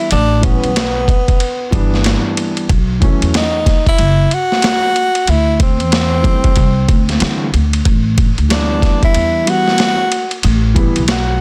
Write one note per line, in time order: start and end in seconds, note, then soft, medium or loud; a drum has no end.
0.00 0.11 E4 loud
0.11 0.54 A1 loud
0.11 0.46 D4 loud
0.11 ride medium
0.41 0.67 E3 medium
0.41 0.68 G3 medium
0.41 0.68 B3 medium
0.41 2.37 B3 medium
0.41 0.69 C#4 medium
0.41 kick loud
0.41 ride medium
0.64 1.16 B1 medium
0.64 ride soft
0.76 snare loud
0.76 hi-hat pedal medium
0.76 ride medium
1.08 kick medium
1.08 ride medium
1.28 kick medium
1.28 ride soft
1.40 ride medium
1.71 2.14 G1 medium
1.71 2.64 E3 medium
1.71 2.64 G3 medium
1.71 2.65 B3 medium
1.71 2.65 D4 loud
1.71 kick medium
1.71 ride medium
1.94 snare soft
2.04 snare loud
2.04 hi-hat pedal medium
2.04 ride medium
2.37 ride medium
2.57 ride soft
2.69 3.11 B1 loud
2.69 kick loud
2.69 ride medium
3.00 3.41 E3 medium
3.00 3.42 F#3 medium
3.00 3.42 A3 medium
3.00 3.43 C#4 medium
3.00 kick medium
3.00 ride medium
3.22 3.74 E2 medium
3.22 ride soft
3.34 3.84 D#4 medium
3.34 snare loud
3.34 hi-hat pedal medium
3.34 ride medium
3.66 kick medium
3.66 snare soft
3.66 ride medium
3.86 4.35 E4 loud
3.86 kick medium
3.86 ride soft
3.98 4.24 F#1 medium
3.98 ride medium
4.31 5.31 F#4 loud
4.31 ride medium
4.52 snare soft
4.62 snare loud
4.62 hi-hat pedal soft
4.62 ride medium
4.96 ride medium
5.15 ride soft
5.27 5.80 D2 loud
5.27 5.61 E4 loud
5.27 ride medium
5.60 7.51 C4 loud
5.60 kick loud
5.60 ride medium
5.80 6.32 E2 medium
5.80 ride soft
5.92 snare loud
5.92 hi-hat pedal soft
5.92 ride medium
6.22 6.48 E3 medium
6.22 6.49 G3 medium
6.22 6.49 A3 medium
6.22 6.50 C4 medium
6.22 kick medium
6.22 ride medium
6.44 kick medium
6.44 ride soft
6.56 6.83 C2 medium
6.56 kick medium
6.56 ride medium
6.88 7.15 D2 medium
6.88 kick loud
6.88 ride medium
7.09 snare soft
7.09 ride soft
7.19 7.47 D3 medium
7.19 7.45 E3 medium
7.19 7.46 G3 medium
7.19 7.46 A3 medium
7.19 7.46 C4 medium
7.19 snare loud
7.19 hi-hat pedal soft
7.19 ride medium
7.54 7.79 D2 medium
7.54 ride medium
7.73 ride soft
7.85 8.28 A1 loud
7.85 kick loud
7.85 ride medium
8.18 kick loud
8.18 ride medium
8.38 8.90 D2 medium
8.38 ride soft
8.49 9.41 E3 medium
8.49 9.42 G3 medium
8.49 9.42 B3 medium
8.49 9.00 D4 medium
8.49 9.43 D4 medium
8.49 snare loud
8.49 hi-hat pedal medium
8.49 ride medium
8.82 kick medium
8.82 snare soft
8.82 ride medium
9.03 9.51 E4 loud
9.03 kick medium
9.03 ride soft
9.14 9.41 E2 medium
9.14 ride medium
9.45 9.94 E3 medium
9.45 9.95 G3 medium
9.45 9.95 B3 medium
9.45 9.96 E4 medium
9.45 ride medium
9.50 10.45 F#4 loud
9.68 snare soft
9.78 snare loud
9.78 hi-hat pedal medium
9.78 ride medium
10.12 ride medium
10.31 ride soft
10.43 10.86 A1 loud
10.43 ride medium
10.75 11.00 E3 medium
10.75 11.01 G3 medium
10.75 11.01 B3 medium
10.75 11.02 E4 medium
10.75 kick loud
10.75 ride medium
10.96 11.41 B1 medium
10.96 ride soft
11.08 11.41 F#4 medium
11.08 snare loud
11.08 hi-hat pedal medium
11.08 ride medium